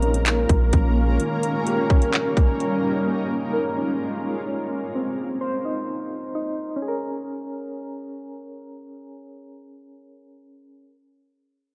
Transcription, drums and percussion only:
0.02 closed hi-hat
0.14 closed hi-hat
0.26 clap, closed hi-hat
0.49 kick, closed hi-hat
0.73 kick, closed hi-hat
1.20 closed hi-hat
1.43 closed hi-hat
1.67 closed hi-hat
1.90 kick, closed hi-hat
2.02 closed hi-hat
2.14 clap, closed hi-hat
2.37 kick, closed hi-hat
2.60 closed hi-hat

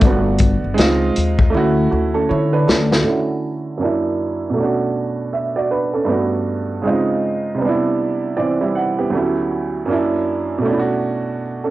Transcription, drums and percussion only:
0.01 kick, closed hi-hat
0.38 kick, closed hi-hat
0.78 snare, closed hi-hat
1.16 closed hi-hat
1.39 kick
2.69 snare
2.92 snare

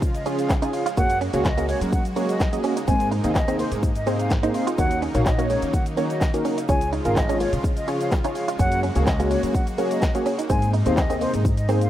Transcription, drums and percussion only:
0.02 kick, shaker
0.15 closed hi-hat, shaker
0.26 open hi-hat, shaker
0.39 closed hi-hat, shaker
0.49 kick, snare, clap, shaker
0.62 closed hi-hat, shaker
0.73 open hi-hat, shaker
0.86 closed hi-hat, shaker
0.97 kick, shaker
1.10 closed hi-hat, shaker
1.21 open hi-hat, shaker
1.33 closed hi-hat, shaker
1.45 kick, snare, clap, shaker
1.58 closed hi-hat, shaker
1.69 open hi-hat, shaker
1.81 closed hi-hat, shaker
1.93 kick, shaker
2.05 closed hi-hat, shaker
2.16 open hi-hat, shaker
2.29 closed hi-hat, shaker
2.40 kick, snare, clap, shaker
2.53 closed hi-hat, shaker
2.64 open hi-hat, shaker
2.77 closed hi-hat, shaker
2.87 kick, shaker
3.00 closed hi-hat, shaker
3.12 open hi-hat, shaker
3.24 closed hi-hat, shaker
3.35 kick, snare, clap, shaker
3.48 closed hi-hat, shaker
3.59 open hi-hat, shaker
3.72 closed hi-hat, shaker
3.83 kick, shaker
3.95 closed hi-hat, shaker
4.07 open hi-hat, shaker
4.19 closed hi-hat, shaker
4.30 kick, snare, clap, shaker
4.43 closed hi-hat, shaker
4.54 open hi-hat, shaker
4.67 closed hi-hat, shaker
4.78 kick, shaker
4.91 closed hi-hat, shaker
5.02 open hi-hat, shaker
5.14 closed hi-hat, shaker
5.26 kick, snare, clap, shaker
5.39 closed hi-hat, shaker
5.49 open hi-hat, shaker
5.62 closed hi-hat, shaker
5.73 kick, shaker
5.86 closed hi-hat, shaker
5.97 open hi-hat, shaker
6.10 closed hi-hat, shaker
6.21 kick, snare, clap, shaker
6.34 closed hi-hat, shaker
6.45 open hi-hat, shaker
6.58 closed hi-hat, shaker
6.68 kick, shaker
6.81 closed hi-hat, shaker
6.93 open hi-hat, shaker
7.05 closed hi-hat, shaker
7.16 kick, snare, clap, shaker
7.29 closed hi-hat, shaker
7.40 open hi-hat, shaker
7.53 closed hi-hat, shaker
7.64 kick, shaker
7.77 closed hi-hat, shaker
7.88 open hi-hat, shaker
8.01 closed hi-hat, shaker
8.11 kick, snare, clap, shaker
8.24 closed hi-hat, shaker
8.35 open hi-hat, shaker
8.48 closed hi-hat, shaker
8.59 kick, shaker
8.72 closed hi-hat, shaker
8.83 open hi-hat, shaker
8.95 closed hi-hat, shaker
9.07 kick, snare, clap, shaker
9.20 closed hi-hat, shaker
9.31 open hi-hat, shaker
9.43 closed hi-hat, shaker
9.54 kick, shaker
9.67 closed hi-hat, shaker
9.78 open hi-hat, shaker
9.91 closed hi-hat, shaker
10.02 kick, snare, clap, shaker
10.15 closed hi-hat, shaker
10.26 open hi-hat, shaker
10.39 closed hi-hat, shaker
10.49 kick, shaker
10.62 closed hi-hat, shaker
10.74 open hi-hat, shaker
10.86 closed hi-hat, shaker
10.97 kick, snare, clap, shaker
11.10 closed hi-hat, shaker
11.21 open hi-hat, shaker
11.34 closed hi-hat, shaker
11.45 kick, shaker
11.57 closed hi-hat, shaker
11.69 open hi-hat, shaker
11.81 closed hi-hat, shaker

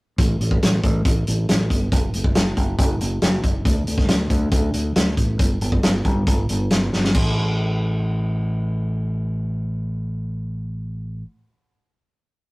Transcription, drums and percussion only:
0.18 kick, closed hi-hat
0.41 closed hi-hat
0.51 kick
0.62 snare, closed hi-hat
0.84 kick, closed hi-hat
1.05 kick, closed hi-hat
1.27 closed hi-hat
1.49 snare, closed hi-hat
1.70 kick, closed hi-hat
1.92 kick, closed hi-hat
2.14 closed hi-hat
2.24 kick
2.35 snare, closed hi-hat
2.57 kick, closed hi-hat
2.79 kick, closed hi-hat
3.01 closed hi-hat
3.22 snare, closed hi-hat
3.44 kick, closed hi-hat
3.65 kick, closed hi-hat
3.87 closed hi-hat
3.98 kick, snare
4.08 snare, closed hi-hat
4.30 kick, closed hi-hat
4.51 kick, closed hi-hat
4.73 closed hi-hat
4.96 snare, closed hi-hat
5.17 kick, closed hi-hat
5.39 kick, closed hi-hat
5.61 closed hi-hat
5.72 kick
5.83 snare, closed hi-hat
6.05 kick, closed hi-hat
6.27 kick, closed hi-hat
6.49 closed hi-hat
6.70 snare, closed hi-hat
6.93 snare
7.04 snare
7.15 kick, crash

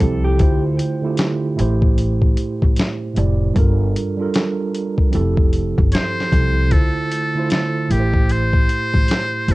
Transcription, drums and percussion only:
0.01 kick, closed hi-hat
0.39 kick, closed hi-hat
0.79 closed hi-hat
1.17 snare, closed hi-hat
1.59 closed hi-hat
1.82 kick
1.98 closed hi-hat
2.22 kick
2.37 closed hi-hat
2.62 kick
2.76 snare, closed hi-hat
3.16 closed hi-hat
3.56 kick, closed hi-hat
3.96 closed hi-hat
4.34 snare, closed hi-hat
4.74 closed hi-hat
4.98 kick
5.13 closed hi-hat
5.37 kick
5.53 closed hi-hat
5.78 kick
5.92 snare, closed hi-hat
6.20 snare
6.32 kick, closed hi-hat
6.71 kick, closed hi-hat
7.11 closed hi-hat
7.50 snare, closed hi-hat
7.91 closed hi-hat
8.14 kick
8.29 closed hi-hat
8.53 kick
8.69 closed hi-hat
8.94 kick
9.08 snare, closed hi-hat
9.48 closed hi-hat

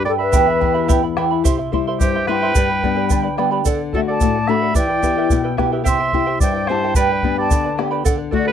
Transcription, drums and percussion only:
0.33 bombo low, shaker
0.62 bombo low
0.89 bombo low, shaker
1.17 bombo rim
1.45 bombo low, shaker
1.73 bombo low
2.00 bombo low, shaker
2.27 bombo rim
2.55 bombo low, shaker
2.83 bombo low
3.10 bombo low, shaker
3.38 bombo rim
3.65 bombo low, shaker
3.93 bombo low
4.21 bombo low, shaker
4.48 bombo rim
4.75 bombo low, shaker
5.03 bombo low, shaker
5.30 bombo low, shaker
5.58 bombo rim, bombo low
5.86 bombo low, shaker
6.13 bombo low
6.40 bombo low, shaker
6.67 bombo rim
6.95 bombo low, shaker
7.22 bombo low
7.51 bombo low, shaker
7.79 bombo rim
8.06 bombo low, shaker
8.32 bombo low

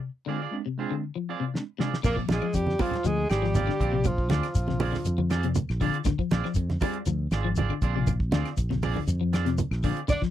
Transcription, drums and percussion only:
1.55 snare
1.80 snare
1.94 snare
2.04 kick, crash, high conga, low conga, claves, shekere
2.17 kick
2.29 snare, closed hi-hat, high conga, shekere
2.42 claves
2.54 kick, closed hi-hat, high conga, shekere
2.67 snare, high conga
2.79 kick, open hi-hat, high conga, claves, shekere
2.91 snare, closed hi-hat, low conga
3.04 closed hi-hat, high conga, shekere
3.30 snare, closed hi-hat, claves, shekere
3.44 snare
3.55 closed hi-hat, high conga, low conga, shekere
3.67 snare, claves
3.80 kick, closed hi-hat, shekere
4.04 kick, closed hi-hat, high conga, low conga, claves, shekere
4.18 kick
4.30 snare, closed hi-hat, high conga, shekere
4.43 snare, closed hi-hat, claves
4.55 kick, closed hi-hat, high conga, shekere
4.68 snare, high conga
4.80 open hi-hat, high conga, claves, shekere
4.93 snare, low conga
5.05 closed hi-hat, high conga, shekere
5.18 high conga
5.30 snare, closed hi-hat, claves, shekere
5.43 closed hi-hat
5.55 closed hi-hat, high conga, low conga, shekere
5.69 snare, claves
5.81 kick, open hi-hat, shekere
5.94 closed hi-hat
6.05 kick, snare, closed hi-hat, high conga, low conga, claves, shekere
6.19 kick
6.30 snare, closed hi-hat, high conga, shekere
6.44 snare, claves
6.54 kick, closed hi-hat, high conga, shekere
6.70 snare, high conga
6.80 kick, open hi-hat, high conga, claves, shekere
6.94 closed hi-hat
7.05 closed hi-hat, shekere
7.31 snare, closed hi-hat, claves, shekere
7.56 closed hi-hat, high conga, low conga, shekere
7.70 claves
7.82 kick, closed hi-hat, shekere
8.07 kick, closed hi-hat, high conga, low conga, claves, shekere
8.20 kick
8.32 snare, closed hi-hat, high conga, shekere
8.45 snare, closed hi-hat, claves
8.57 kick, closed hi-hat, high conga, shekere
8.71 snare, high conga
8.82 open hi-hat, high conga, claves, shekere
8.96 low conga
9.08 closed hi-hat, high conga, shekere
9.33 snare, closed hi-hat, claves, shekere
9.46 snare, closed hi-hat
9.58 closed hi-hat, high conga, low conga, shekere
9.71 snare, claves
9.83 kick, open hi-hat, shekere
9.97 closed hi-hat
10.08 kick, closed hi-hat, high conga, low conga, claves, shekere
10.22 kick, snare

